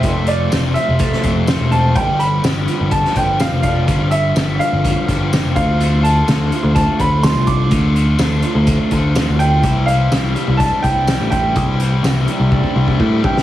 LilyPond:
<<
  \new Staff \with { instrumentName = "Upright piano" } { \time 4/4 \key d \dorian \tempo 4 = 125 e''8 d''4 e''2 a''8 | g''8 b''4. a''8 g''8 f''8 f''8~ | f''8 e''4 f''2 f''8~ | f''8 a''4. a''8 b''8 c'''8 d'''8~ |
d'''8 r2. g''8~ | g''8 f''4. a''8 g''4 g''8~ | g''2. r8 g''8 | }
  \new Staff \with { instrumentName = "Overdriven electric guitar" } { \time 4/4 \key d \dorian <f, c f a c' f'>8 <f a c' f'>8 <f, c f a c' f'>4. <f a c' f'>8 <f a c' f'>8 <f a c' f'>8 | <g, d f g b g'>8 <f g b g'>8 <g, d f g b g'>4. <f g b g'>8 <f g b g'>8 <f g b g'>8 | <g, d f g b g'>8 <f g b g'>8 <g, d f g b g'>4. <f g b g'>8 <f g b g'>8 <d a d' f'>8 | <d a d' f'>8 <a d' f'>8 <d a d' f'>4. <a d' f'>8 <d a d' f'>8 <a d' f'>8 |
<d a d' f'>8 <a d' f'>8 <d a d' f'>4. <a d' f'>8 <d a d' f'>8 <a d' f'>8 | <c e g c' e'>8 <g c' e'>8 <c e g c' e'>4. <g c' e'>8 <e g c' e'>8 <g c' e'>8 | <c e g c' e'>8 <g c' e'>8 <c e g c' e'>4. <g c' e'>8 <e g c' e'>8 <g c' e'>8 | }
  \new Staff \with { instrumentName = "Clean electric guitar" } { \clef bass \time 4/4 \key d \dorian <f, c a c'>4 c4 a8 c4 c'8 | g,4 d8 f8 b8 d8 f8 d'8 | g,4 d8 f8 b8 d8 f8 d8 | d4 d8 f8 a8 d8 f4 |
d4 d8 f8 a8 d8 f8 e'8 | c4 e8 g8 d'8 e8 g8 e'8 | c4 e8 g8 d'8 e8 g8 e'8 | }
  \new Staff \with { instrumentName = "Picked electric bass" } { \clef bass \time 4/4 \key d \dorian f,,4 f,,8 r16 f,,8 r16 f,,8. e,,8. | g,,4 g,,8 r16 g,,8 r16 g,,8. f,,8. | g,,4 g,,8 r16 g,,8 r16 g,,8. f,,16 d,8~ | d,4 d,8 r16 d,8 r16 d,8. c,8. |
d,4 d,8 r16 d,8 r16 d,8. d,8. | c,4 c,8 r16 c,8 r16 c,8. a,,8. | c,4 c,8 r16 c,8 r16 c,8 a,8 g,8 | }
  \new DrumStaff \with { instrumentName = "Drums" } \drummode { \time 4/4 <hh bd>8 hh8 <hh sn tamb>8 hh8 <hh bd>16 sn16 <hh bd>8 <hh sn tamb>8 hh8 | <hh bd>8 hh8 <hh sn tamb>8 hh8 <hh bd>16 sn16 <hh bd>8 <hh sn tamb>8 <hh bd>8 | <hh bd>8 hh8 <hh sn tamb>8 hh8 <hh bd>8 <hh bd>8 <hh sn tamb>8 <hh bd>8 | hh8 hh8 <hh sn tamb>8 hh8 <hh bd>8 <hh bd>8 <hh sn tamb>8 <hh bd>8 |
<hh bd>8 hh8 <hh sn tamb>8 hh8 <hh bd>8 <hh bd>8 <hh sn tamb>8 hh8 | <hh bd>8 hh8 <hh sn tamb>8 hh8 <hh bd>8 <hh bd>8 <hh sn tamb>8 <hh bd>8 | <hh bd>8 hh8 <hh sn tamb>8 hh8 bd16 bd8 bd16 bd8 bd16 sn16 | }
>>